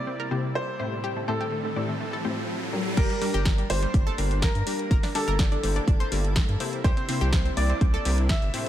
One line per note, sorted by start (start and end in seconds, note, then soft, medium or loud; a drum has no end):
0.00 1.02 C3 medium
0.00 1.02 G3 medium
0.00 1.00 A#3 medium
0.00 2.93 E4 medium
0.00 0.46 D5 medium
0.00 1.00 D5 medium
0.00 riser medium
0.07 0.15 C4 medium
0.20 0.95 A#4 medium
0.31 0.77 C3 medium
0.31 0.77 A#3 medium
0.31 0.77 C4 medium
0.31 0.77 E4 medium
0.31 0.77 G4 medium
0.31 0.77 C5 medium
0.55 1.19 C5 medium
0.80 1.25 A2 medium
0.80 1.25 A3 medium
0.80 1.25 C4 medium
0.80 1.25 E4 medium
0.80 1.25 G4 medium
0.80 1.25 C5 loud
1.04 2.95 A2 medium
1.04 2.95 G3 medium
1.04 2.95 C4 medium
1.04 1.12 G4 loud
1.04 2.95 A4 medium
1.16 1.24 A3 medium
1.28 1.39 A2 medium
1.28 1.39 A3 medium
1.28 1.36 A3 medium
1.28 1.39 C4 medium
1.28 1.39 E4 medium
1.28 1.39 G4 medium
1.28 2.88 A4 medium
1.28 1.39 C5 loud
1.41 1.48 G4 medium
1.52 1.60 A3 medium
1.65 1.72 A3 medium
1.76 1.88 A2 medium
1.76 1.88 A3 medium
1.76 1.88 C4 medium
1.76 1.88 E4 medium
1.76 1.88 G4 medium
1.76 1.88 D5 medium
1.89 1.97 A3 medium
2.01 2.09 A3 medium
2.13 2.88 A4 medium
2.25 2.36 A2 medium
2.25 2.36 A3 medium
2.25 2.36 C4 medium
2.25 2.36 E4 medium
2.25 2.36 G4 medium
2.25 2.36 C5 loud
2.73 3.19 G3 medium
2.73 3.19 D4 medium
2.73 3.19 G4 medium
2.73 3.19 A#4 medium
2.97 3.05 G1 loud
2.97 6.81 G3 medium
2.97 8.69 A#3 medium
2.97 4.89 D4 medium
2.97 3.06 G4 loud
2.97 3.61 A#4 loud
2.97 kick loud
2.97 closed hi-hat medium
2.97 crash loud
3.10 3.18 G3 medium
3.10 closed hi-hat soft
3.21 3.33 G3 medium
3.21 3.30 G3 medium
3.21 3.33 D4 medium
3.21 3.33 G4 medium
3.21 3.33 A#4 loud
3.21 open hi-hat loud
3.34 3.63 G1 medium
3.34 3.42 G4 loud
3.34 closed hi-hat soft
3.45 3.54 G3 medium
3.45 kick loud
3.45 snare loud
3.45 closed hi-hat medium
3.58 3.66 G3 medium
3.58 closed hi-hat soft
3.70 3.86 G1 medium
3.70 3.81 G3 medium
3.70 3.81 D4 medium
3.70 3.81 G4 medium
3.70 4.33 C5 loud
3.70 3.81 C5 medium
3.70 4.33 C5 medium
3.70 open hi-hat loud
3.83 3.90 G3 medium
3.83 closed hi-hat soft
3.94 4.10 G1 loud
3.94 4.02 G3 medium
3.94 kick loud
3.94 closed hi-hat medium
4.07 4.82 A4 medium
4.07 closed hi-hat soft
4.18 4.48 G1 loud
4.18 4.64 G3 medium
4.18 4.64 D4 medium
4.18 4.64 G4 medium
4.18 4.64 A#4 loud
4.18 open hi-hat loud
4.31 closed hi-hat soft
4.42 5.06 A#4 loud
4.42 5.06 A#4 medium
4.42 kick loud
4.42 snare loud
4.42 closed hi-hat medium
4.55 4.62 G2 medium
4.55 closed hi-hat soft
4.67 5.12 G3 medium
4.67 5.12 D4 medium
4.67 5.12 G4 medium
4.67 5.12 A#4 loud
4.67 open hi-hat loud
4.79 closed hi-hat soft
4.91 4.99 G1 loud
4.91 8.69 E4 medium
4.91 4.99 A#4 loud
4.91 kick loud
4.91 closed hi-hat medium
5.03 5.11 D4 medium
5.03 snare soft
5.03 open hi-hat medium
5.15 5.26 G3 medium
5.15 5.23 D4 medium
5.15 5.26 D4 medium
5.15 5.26 G4 medium
5.15 6.75 A4 loud
5.15 6.75 A4 medium
5.15 5.26 A#4 loud
5.15 open hi-hat loud
5.28 5.57 G1 medium
5.28 5.35 A#4 loud
5.28 closed hi-hat soft
5.39 5.48 D4 medium
5.39 kick loud
5.39 snare loud
5.39 closed hi-hat medium
5.52 5.59 D4 medium
5.52 closed hi-hat soft
5.63 5.79 G1 medium
5.63 5.75 G3 medium
5.63 5.75 D4 medium
5.63 5.75 G4 medium
5.63 5.75 C5 medium
5.63 open hi-hat loud
5.76 5.84 D4 medium
5.76 closed hi-hat soft
5.88 6.03 G1 loud
5.88 5.96 D4 medium
5.88 kick loud
5.88 closed hi-hat medium
6.00 6.75 C5 medium
6.00 closed hi-hat soft
6.12 6.41 G1 loud
6.12 6.57 G3 medium
6.12 6.57 A#3 loud
6.12 6.57 D4 medium
6.12 6.57 G4 medium
6.12 open hi-hat loud
6.24 closed hi-hat soft
6.36 kick loud
6.36 snare loud
6.36 closed hi-hat medium
6.49 6.56 G2 medium
6.49 closed hi-hat soft
6.60 7.06 C3 medium
6.60 7.06 A#3 medium
6.60 7.06 C4 medium
6.60 7.06 E4 medium
6.60 7.06 G4 medium
6.60 7.06 C5 loud
6.60 open hi-hat loud
6.73 closed hi-hat soft
6.84 6.92 C2 loud
6.84 8.69 C3 medium
6.84 8.69 G3 medium
6.84 8.69 D4 medium
6.84 6.93 G4 loud
6.84 7.48 C5 loud
6.84 kick loud
6.84 closed hi-hat medium
6.97 7.05 C4 medium
6.97 closed hi-hat soft
7.09 7.20 C3 medium
7.09 7.20 A#3 medium
7.09 7.20 C4 medium
7.09 7.17 C4 medium
7.09 7.20 E4 medium
7.09 7.20 G4 medium
7.09 7.20 C5 loud
7.09 open hi-hat loud
7.21 7.50 C2 medium
7.21 7.29 G4 loud
7.21 closed hi-hat soft
7.33 7.41 C4 medium
7.33 kick loud
7.33 snare loud
7.33 closed hi-hat medium
7.45 7.53 C4 medium
7.45 closed hi-hat soft
7.57 7.73 C2 medium
7.57 7.68 C3 medium
7.57 7.68 A#3 medium
7.57 7.68 C4 medium
7.57 7.68 E4 medium
7.57 7.68 G4 medium
7.57 8.20 D5 medium
7.57 7.68 D5 medium
7.57 8.20 D5 loud
7.57 open hi-hat loud
7.70 7.77 C4 medium
7.70 closed hi-hat soft
7.81 7.97 C2 loud
7.81 7.89 C4 medium
7.81 kick loud
7.81 closed hi-hat medium
7.94 8.69 A4 medium
7.94 closed hi-hat soft
8.05 8.35 C2 loud
8.05 8.51 C3 medium
8.05 8.51 A#3 medium
8.05 8.51 C4 medium
8.05 8.51 E4 medium
8.05 8.51 G4 medium
8.05 8.51 C5 medium
8.05 open hi-hat loud
8.18 closed hi-hat soft
8.29 8.69 E5 medium
8.29 8.69 E5 loud
8.29 kick loud
8.29 snare loud
8.29 closed hi-hat medium
8.42 8.50 G1 loud
8.42 closed hi-hat soft
8.54 8.69 A2 medium
8.54 8.69 A3 medium
8.54 8.69 C4 medium
8.54 8.69 E4 medium
8.54 8.69 G4 medium
8.54 8.69 C5 loud
8.54 open hi-hat loud